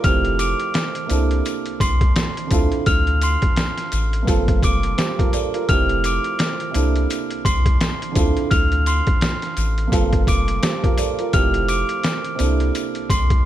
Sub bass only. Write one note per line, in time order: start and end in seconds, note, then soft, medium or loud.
0.05 0.54 F1 loud
1.11 1.42 C2 loud
1.80 2.12 C2 loud
2.51 2.70 D2 loud
2.87 3.37 D2 loud
3.93 4.24 A1 medium
4.28 4.59 G1 loud
4.63 4.94 F1 medium
5.69 6.19 F1 loud
6.75 7.07 C2 loud
7.45 7.77 C2 loud
8.16 8.35 D2 loud
8.52 9.02 D2 loud
9.57 9.89 A1 medium
9.92 10.24 G1 loud
10.28 10.59 F1 medium
11.34 11.84 F1 loud
12.40 12.71 C2 loud
13.10 13.41 C2 medium